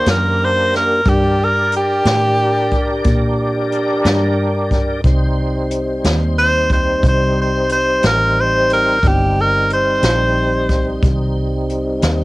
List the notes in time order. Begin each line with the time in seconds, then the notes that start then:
Already playing: A#3 D4 G4 A#4
0.06 F#2, snare, closed hi-hat
0.10 A#4
0.44 C5
0.73 A#4, snare, closed hi-hat
1.05 G2 D4 G4 A#4, kick, closed hi-hat
1.09 D5
1.44 A#4
1.72 closed hi-hat
1.77 G4
2.05 A2, snare, closed hi-hat
2.71 kick, closed hi-hat
3.04 A#2, kick, closed hi-hat
3.72 closed hi-hat
4.05 G2, snare, closed hi-hat
4.71 kick, snare, closed hi-hat
5.04 C2 G3 C4 D#4 C5, kick, closed hi-hat
5.70 closed hi-hat
6.04 D#2, snare, closed hi-hat
6.38 C5
6.70 C5, kick, closed hi-hat
7.03 C2, kick, closed hi-hat
7.08 C5
7.42 C5
7.69 C5, closed hi-hat
8.03 A1 A#4, snare, closed hi-hat
8.40 C5
8.70 A#4, closed hi-hat
9.03 G1 G3 C4 D#4, kick, closed hi-hat
9.08 G4
9.41 A#4
9.70 C5, closed hi-hat
10.03 A#1, snare, closed hi-hat
10.69 kick, snare, closed hi-hat
11.03 C2, kick, closed hi-hat
11.69 closed hi-hat
12.02 D#2, snare, closed hi-hat